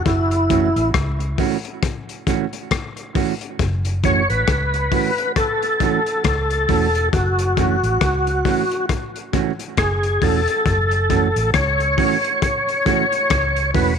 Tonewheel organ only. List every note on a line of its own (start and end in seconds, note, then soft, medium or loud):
0.05 0.90 E4 medium
4.05 4.28 C#5 loud
4.30 5.32 B4 medium
5.37 6.23 A4 medium
6.25 7.09 A4 medium
7.13 8.86 F#4 medium
9.79 10.24 G#4 medium
10.23 11.50 A4 medium
11.55 12.42 C#5 medium
12.43 13.71 C#5 medium
13.74 13.94 B4 medium